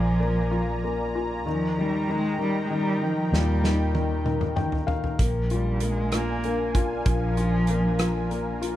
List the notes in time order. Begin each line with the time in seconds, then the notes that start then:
Already playing: A#1 F3 A#3 F4 D5 G#5 A#5
0.20 A#3
0.51 F4
0.84 A#3
1.15 F4
1.46 D#2 D#3 F3 D#4 A#4 G5
1.78 D#3 G3
2.09 D#3 G#3
2.39 D#3 G3
2.64 G#3
2.70 D#3 G3
3.02 D#3 F3
3.32 D#2 A#2 G3, snare
3.64 D#3, snare
3.94 D#3, high tom
4.24 D#3, mid tom
4.41 mid tom
4.56 D#3 G5, mid tom
4.72 floor tom
4.87 D#3 F5, floor tom
5.04 floor tom
5.19 A#1 F3 A#3 D4 F5 G#5, kick, closed hi-hat
5.50 G3 F4, closed hi-hat
5.80 G#3 A#3, closed hi-hat
6.12 A#3 F4, cross-stick, closed hi-hat
6.44 A#3, closed hi-hat
6.75 F4, kick, closed hi-hat
7.06 A#1 F3, kick, closed hi-hat
7.37 F4, closed hi-hat
7.67 A#3, closed hi-hat
7.99 F4, cross-stick, closed hi-hat
8.31 A#3, closed hi-hat
8.62 F4, closed hi-hat